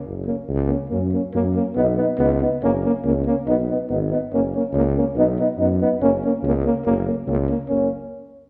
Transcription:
X:1
M:2/4
L:1/8
Q:1/4=141
K:F#
V:1 name="Euphonium"
z C z C | C C C C | D D D D | C C C C |
D D D D | C C C C | D D D D | C C C C |
C C C C | C z3 |]
V:2 name="Trombone"
z A, z A, | A, A, A, A, | B, B, B, B, | A, A, A, A, |
B, B, B, B, | A, A, A, A, | B, B, B, B, | A, A, A, A, |
A, A, A, A, | A, z3 |]
V:3 name="Tuba" clef=bass
F,,,2 C,,2 | F,,2 F,,2 | B,,,2 C,,2 | F,,,2 C,,2 |
B,,,2 G,,,2 | F,,,2 C,,2 | B,,,2 F,,2 | F,,,2 C,,2 |
F,,,2 C,,2 | F,,, z3 |]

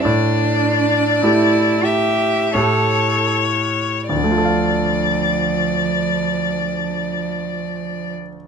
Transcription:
X:1
M:3/4
L:1/8
Q:1/4=41
K:Dm
V:1 name="Violin"
d3 e ^c2 | d6 |]
V:2 name="Cello"
D2 E G A z | F,6 |]
V:3 name="Grand piano"
A,,2 [A,EG]2 [A,,A,EG]2 | [D,,D,A,FAf]6 |]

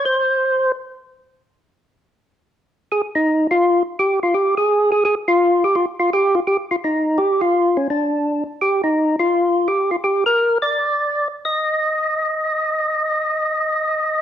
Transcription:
X:1
M:4/4
L:1/8
Q:"Swing" 1/4=169
K:Eb
V:1 name="Tonewheel organ"
c4 z4 | z8 | A E2 F2 z G F | G A2 A A F2 G |
F F G F G F E2 | G F2 _D =D3 z | G E2 F3 G F | G B2 d4 z |
e8- | e8 |]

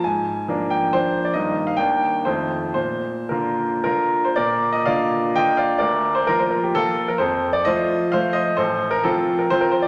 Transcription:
X:1
M:3/4
L:1/16
Q:1/4=129
K:Bb
V:1 name="Grand piano"
_a6 g2 c3 d | e3 f g4 c4 | c4 B4 [FB]3 c | [Bd]3 e [df]4 [eg]2 [df]2 |
[Bd]3 c B c B G [FA]3 B | [Ac]3 d [ce]4 [cf]2 [ce]2 | [Ac]3 B [FA]3 B c B c d |]
V:2 name="Grand piano"
_A,,4 [F,B,D]4 [F,B,D]4 | [G,,E,B,E]4 [E,,E,B,D]4 [F,,E,A,F]4 | B,,4 [D,B,F]4 [D,B,]4 | B,,4 [D,B,F]4 [D,B,F]4 |
D,,4 [F,B,F]4 [F,B,]4 | F,,4 [F,A,F]4 [F,A,F]4 | A,,,4 [F,C]4 [F,CF]4 |]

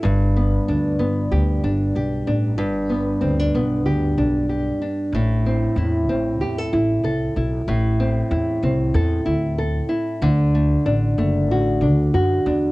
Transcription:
X:1
M:4/4
L:1/16
Q:"Swing 16ths" 1/4=94
K:G
V:1 name="Nylon-string guitar"
G,,2 B,2 D2 B,2 G2 D2 G2 D2 | G,,2 B,2 C D B,2 G2 D2 G2 D2 | A,,2 C2 E2 C2 G A E2 A2 E2 | A,,2 C2 E2 C2 A2 E2 A2 E2 |
D,2 A,2 D2 A,2 F2 D2 F2 D2 |]
V:2 name="Upright bass" clef=bass
G,,,4 D,,2 G,,,2 D,,2 G,,,2 B,,,2 A,,,2 | G,,,4 D,,2 B,,,2 D,,2 B,,,4 z2 | A,,,4 E,,2 A,,,2 E,,2 A,,,2 C,,2 B,,,2 | A,,,4 E,,2 C,,2 E,,2 D,,4 z2 |
D,,4 A,,,2 F,,,2 A,,,2 D,,2 F,,2 E,,2 |]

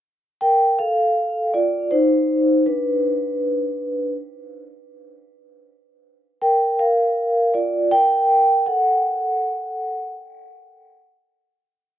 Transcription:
X:1
M:4/4
L:1/8
Q:"Swing 16ths" 1/4=80
K:Fmix
V:1 name="Vibraphone"
z [Bg] [Af]2 [Fd] [Ec]2 [D=B]- | [D=B]3 z4 z | z [Bg] [Bf]2 [Fd] [Bg]2 [A^f]- | [A^f]3 z4 z |]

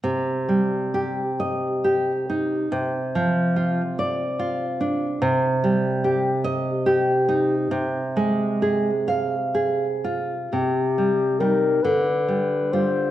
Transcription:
X:1
M:6/8
L:1/8
Q:3/8=46
K:Cm
V:1 name="Clarinet"
z6 | z6 | z6 | z6 |
G2 B =B2 c |]
V:2 name="Nylon-string guitar"
C, G, G e G E | C, F, F d F D | C, G, G e G E | C, A, A f A F |
C, G, [G,E] D, G, [G,F] |]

